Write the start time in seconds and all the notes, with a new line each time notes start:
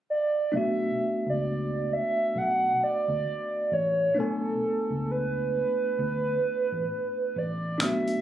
0.10 D5
0.52 B1 A3 B3 D4 E5
0.57 F#4
1.27 C#2 D5
1.93 E5
2.36 B1 F#5
2.84 D5
3.08 D2
3.72 A1 C#5
4.14 B1 A3 B3 D4 A4
4.20 G#5
4.90 C#2
5.11 B4
5.99 D2
6.72 A1
7.36 A1 D5
7.78 B1 A3 B3 D4, kick, closed hi-hat
7.82 F#4 E5
8.08 closed hi-hat